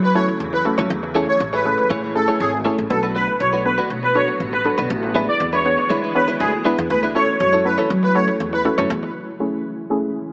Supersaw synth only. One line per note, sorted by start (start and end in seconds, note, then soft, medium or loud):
0.03 0.12 B4 medium
0.15 0.25 C#5 loud
0.53 0.62 B4 medium
1.28 1.37 C#5 medium
1.53 1.88 B4 medium
2.15 2.34 A4 medium
2.40 2.50 G#4 medium
2.90 3.00 A4 medium
3.15 3.34 B4 loud
3.40 3.59 C#5 medium
3.65 3.75 B4 medium
4.03 4.12 B4 medium
4.15 4.25 C#5 medium
4.53 4.62 B4 medium
5.28 5.37 D5 medium
5.53 5.88 C#5 medium
6.15 6.34 B4 medium
6.40 6.50 G#4 medium
6.90 7.00 B4 medium
7.15 7.34 C#5 loud
7.40 7.59 C#5 medium
7.65 7.75 B4 medium
8.03 8.12 B4 medium
8.15 8.25 C#5 medium
8.53 8.62 B4 medium